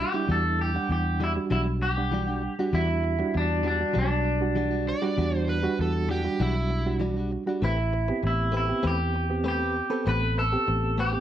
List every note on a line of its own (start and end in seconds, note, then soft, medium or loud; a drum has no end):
0.00 0.28 G4 medium
0.13 0.70 G3 medium
0.13 0.28 G3 soft
0.13 0.28 D4 medium
0.13 0.70 D4 medium
0.13 0.71 E4 medium
0.13 0.28 F#4 soft
0.28 0.77 E2 loud
0.28 0.44 E3 medium
0.28 0.45 G3 medium
0.28 0.44 D4 medium
0.28 0.43 F#4 medium
0.28 0.61 A4 loud
0.45 muted clean electric guitar stroke soft
0.59 0.89 G4 loud
0.59 muted clean electric guitar stroke soft
0.74 1.31 G3 medium
0.74 1.31 D4 medium
0.74 1.32 F#5 medium
0.74 muted clean electric guitar stroke soft
0.89 1.38 E2 medium
0.89 1.20 G4 medium
0.89 muted clean electric guitar stroke soft
1.20 1.36 E3 medium
1.20 1.36 G3 medium
1.20 1.35 D4 medium
1.20 1.31 E4 medium
1.20 1.34 F#4 medium
1.36 1.92 G3 medium
1.36 1.93 D4 medium
1.36 1.93 F#4 medium
1.36 muted clean electric guitar stroke soft
1.50 2.47 B1 medium
1.50 1.67 E3 medium
1.50 1.67 G3 medium
1.50 1.66 D4 medium
1.50 1.60 E4 medium
1.50 1.66 F#4 medium
1.67 muted clean electric guitar stroke soft
1.82 2.77 G4 loud
1.82 muted clean electric guitar stroke soft
1.97 2.54 G3 medium
1.97 2.54 D4 medium
1.97 2.54 F#5 medium
2.12 2.28 E3 medium
2.12 2.28 G3 medium
2.12 2.27 D4 medium
2.12 2.26 F#4 medium
2.27 2.42 G3 soft
2.27 2.42 D4 medium
2.27 2.43 F#4 medium
2.43 muted clean electric guitar stroke soft
2.59 3.15 G3 medium
2.59 2.72 G3 soft
2.59 3.15 D4 medium
2.59 2.73 D4 medium
2.59 2.73 F#4 medium
2.59 3.15 F#4 medium
2.73 3.21 E2 medium
2.73 2.89 E3 medium
2.73 2.89 G3 medium
2.73 2.88 D4 medium
2.73 3.37 E4 medium
2.73 2.87 F#4 loud
2.89 muted clean electric guitar stroke soft
3.03 muted clean electric guitar stroke soft
3.19 3.76 G3 medium
3.19 3.76 D4 medium
3.19 3.76 F#4 medium
3.19 muted clean electric guitar stroke soft
3.34 3.83 E2 medium
3.34 3.65 D4 medium
3.34 muted clean electric guitar stroke soft
3.63 3.80 E3 medium
3.63 3.80 G3 medium
3.63 3.79 D4 medium
3.63 3.78 F#4 medium
3.68 3.95 D4 medium
3.79 4.37 G3 medium
3.79 4.37 D4 medium
3.79 4.37 F#4 medium
3.79 muted clean electric guitar stroke soft
3.93 4.92 B1 medium
3.93 4.10 E3 medium
3.93 4.10 G3 medium
3.93 4.10 D4 medium
3.93 4.09 F#4 medium
3.99 5.77 D4 medium
4.10 muted clean electric guitar stroke soft
4.25 muted clean electric guitar stroke soft
4.41 4.97 G3 medium
4.41 4.98 D4 medium
4.41 4.98 F#4 medium
4.55 4.72 E3 medium
4.55 4.72 G3 medium
4.55 4.71 D4 medium
4.55 4.70 F#4 medium
4.71 4.86 G3 soft
4.71 4.86 D4 soft
4.71 4.86 F#4 medium
4.86 5.47 D5 loud
4.86 muted clean electric guitar stroke soft
5.02 5.58 G3 medium
5.02 5.17 G3 medium
5.02 5.59 D4 medium
5.02 5.17 D4 medium
5.02 5.18 F#4 medium
5.02 5.59 F#4 loud
5.17 5.66 E2 loud
5.17 5.33 E3 medium
5.17 5.33 G3 medium
5.17 5.33 D4 medium
5.17 5.32 F#4 loud
5.33 muted clean electric guitar stroke medium
5.48 5.79 B4 medium
5.48 muted clean electric guitar stroke soft
5.63 6.20 G3 medium
5.63 6.20 D4 medium
5.63 6.20 F#4 loud
5.63 muted clean electric guitar stroke medium
5.79 6.27 E2 medium
5.79 6.10 A4 medium
5.79 muted clean electric guitar stroke soft
6.09 6.25 E3 medium
6.09 6.25 G3 medium
6.09 6.25 D4 medium
6.09 6.25 F#4 medium
6.09 6.40 G4 medium
6.24 6.81 G3 medium
6.24 6.81 D4 medium
6.24 6.81 F#4 medium
6.24 muted clean electric guitar stroke medium
6.40 7.36 B1 medium
6.40 6.56 E3 medium
6.40 6.55 G3 medium
6.40 6.54 D4 medium
6.40 7.01 E4 medium
6.40 6.54 F#4 loud
6.55 muted clean electric guitar stroke soft
6.70 muted clean electric guitar stroke soft
6.86 7.42 G3 medium
6.86 7.42 D4 medium
6.86 7.43 F#4 medium
7.00 7.16 E3 medium
7.00 7.17 G3 medium
7.00 7.17 D4 medium
7.00 7.15 F#4 medium
7.17 7.31 G3 soft
7.17 7.31 D4 soft
7.17 7.31 F#4 medium
7.32 muted clean electric guitar stroke soft
7.46 7.62 G3 medium
7.46 7.61 G3 soft
7.46 7.62 D4 medium
7.46 7.63 D4 soft
7.46 7.62 F#4 medium
7.46 7.63 F#4 medium
7.62 8.10 A1 medium
7.62 7.78 A3 medium
7.62 7.78 C4 medium
7.62 8.21 E4 medium
7.62 7.78 G4 medium
7.62 7.77 B4 medium
7.79 muted clean electric guitar stroke soft
7.93 muted clean electric guitar stroke soft
8.08 8.65 B3 medium
8.08 8.65 C4 medium
8.08 8.65 G4 medium
8.08 muted clean electric guitar stroke soft
8.23 8.71 A1 medium
8.23 8.54 E4 medium
8.23 muted clean electric guitar stroke soft
8.52 8.69 A3 medium
8.52 8.68 C4 medium
8.52 8.68 G4 medium
8.52 8.67 B4 medium
8.57 8.87 E4 medium
8.68 9.25 B3 medium
8.68 9.25 C4 medium
8.68 9.26 G4 medium
8.68 muted clean electric guitar stroke soft
8.83 9.80 E2 medium
8.83 9.00 A3 medium
8.83 8.99 C4 medium
8.83 8.98 G4 medium
8.83 8.98 B4 medium
8.87 9.47 G4 medium
8.99 muted clean electric guitar stroke soft
9.14 muted clean electric guitar stroke soft
9.30 9.86 B3 medium
9.30 9.87 C4 medium
9.30 9.87 G4 medium
9.44 9.61 A3 medium
9.44 9.61 C4 medium
9.44 9.60 G4 medium
9.44 9.58 B4 medium
9.48 10.04 G4 medium
9.59 9.75 C4 soft
9.59 9.75 G4 soft
9.59 9.75 B4 medium
9.75 muted clean electric guitar stroke soft
9.90 10.47 B3 medium
9.90 10.47 C4 medium
9.90 10.05 C4 soft
9.90 10.05 G4 soft
9.90 10.47 A4 medium
9.90 10.06 B4 medium
10.06 10.55 A1 loud
10.06 10.22 A3 medium
10.06 10.22 C4 medium
10.06 10.22 G4 medium
10.06 10.21 B4 loud
10.06 10.36 B4 loud
10.22 muted clean electric guitar stroke soft
10.37 10.95 A4 loud
10.37 muted clean electric guitar stroke soft
10.52 11.08 B3 medium
10.52 11.08 C4 medium
10.52 11.09 G4 medium
10.52 muted clean electric guitar stroke soft
10.67 11.16 A1 medium
10.67 muted clean electric guitar stroke soft
10.98 11.14 A3 medium
10.98 11.13 C4 medium
10.98 11.13 G4 medium
10.98 11.20 G4 loud
10.98 11.12 B4 medium
11.12 11.20 B3 medium
11.12 11.20 C4 medium
11.12 11.20 G4 medium
11.12 muted clean electric guitar stroke soft